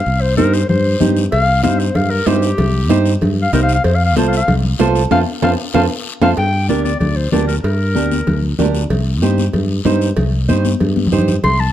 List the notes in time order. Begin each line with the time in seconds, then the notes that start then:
Already playing: F5
0.06 C2, long guiro
0.21 C5
0.37 G2 D#4 G4 A#4 C5, high conga, short guiro
0.54 C5, short guiro
0.69 G2 C5, low conga, long guiro
1.00 G2 D#4 G4 C5, high conga, low conga, short guiro
1.17 short guiro
1.32 C2 F5, cowbell, long guiro
1.63 G2 D#4 G4 C5 F5, cowbell, high conga, short guiro
1.80 C5, short guiro
1.95 G2 F5, cowbell, low conga, long guiro
2.10 A#4
2.26 G2 D#4 G4 C5, cowbell, high conga, low timbale, short guiro
2.42 short guiro
2.58 C2, cowbell, low conga, long guiro
2.89 G2 D#4 G4 C5, cowbell, high conga, short guiro
3.06 short guiro
3.21 G2, cowbell, low conga, long guiro
3.42 F5
3.53 C2 D#4 G4 A#4 C5, cowbell, high conga, short guiro
3.63 F5
3.69 short guiro
3.75 F5
3.84 F2 C5, cowbell, long guiro
3.95 F5
4.06 F5
4.16 C2 F4 A4 C5, cowbell, high conga, short guiro
4.28 F5
4.33 short guiro
4.37 F5
4.48 C2, cowbell, low conga, long guiro
4.79 C2 F4 A4 C5, cowbell, high conga, low timbale, short guiro
4.95 short guiro
5.11 F2 F4 A4 C5 F5, high conga, high timbale, long guiro
5.42 F2 F4 A4 C5 F5, high conga, high timbale, long guiro
5.74 F2 F4 A4 C5 F5, high conga, high timbale, long guiro
6.21 F2 F4 A4 C5 F5, high conga, high timbale, long guiro
6.37 G2 G5, cowbell, long guiro
6.69 D2 D4 G4 A#4 D5, high conga, short guiro
6.85 D5, high conga, short guiro
7.00 D2 D5, cowbell, low conga, long guiro
7.16 C5
7.32 D2 D4 G4 A#4 D5, high conga, low conga, low timbale, short guiro
7.48 A#4, short guiro
7.63 G2 A#4, cowbell, long guiro
7.95 D2 D4 G4 A#4, high conga, short guiro
8.12 high conga, short guiro
8.27 D2, cowbell, low conga, long guiro
8.59 D2 D4 G4 A#4, high conga, low conga, low timbale, short guiro
8.75 short guiro
8.90 C2, cowbell, low conga, long guiro
9.22 G2 D#4 G4 C5, high conga, short guiro
9.38 high conga, short guiro
9.53 G2, cowbell, low conga, long guiro
9.85 G2 D#4 G4 C5, high conga, low timbale, short guiro
10.01 short guiro
10.17 C2, cowbell, low conga, long guiro
10.48 G2 D#4 G4 C5, high conga, short guiro
10.65 high conga, short guiro
10.80 G2, cowbell, low conga, long guiro
10.96 high conga
11.07 low conga
11.12 G2 D#4 G4 C5, short guiro
11.18 low conga
11.28 low conga, short guiro
11.44 C2 C6, cowbell, low conga, long guiro
11.60 A5